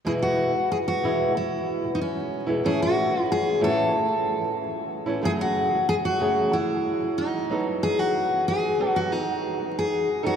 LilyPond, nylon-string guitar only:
\new Staff \with { instrumentName = "Nylon-string guitar" } { \clef bass \time 4/4 \key e \major \tempo 4 = 93 <e, b, e gis b e'>8. <e, b,>8 r16 <e, b, e gis b e'>8 <e, b, e>8 r16 <e, b, e>8 r8 <e, b, e gis b e'>16 | <a, e a cis' e'>8. <a, e>8 r16 <a, e a cis' e'>8 <a, e>8 r16 <a, e>8 r8 <a, e a cis' e'>16 | <fis, cis fis a cis' gis'>8. <fis, cis fis>8 r16 <fis, cis fis a cis' gis'>8 <fis, cis fis>8 r16 <fis, cis fis>8 r16 <fis b dis' a'>8~ | <fis b dis' a'>8. <fis b>8 r16 <fis b dis' a'>8 <fis b>8 r16 <fis b>8 r8 <fis b dis' a'>16 | }